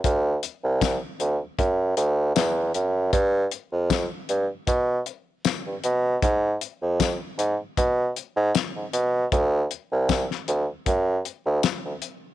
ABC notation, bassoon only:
X:1
M:4/4
L:1/16
Q:"Swing 16ths" 1/4=78
K:Dmix
V:1 name="Bassoon" clef=bass
D,,2 z C,,2 z D,, z F,,2 D,,2 E,,2 F,,2 | G,,2 z =F,,2 z G,, z B,,2 z3 G,, B,,2 | _A,,2 z =F,,2 z A,, z _C,2 z A,, z A,, C,2 | D,,2 z C,,2 z D,, z F,,2 z D,, z D,, z2 |]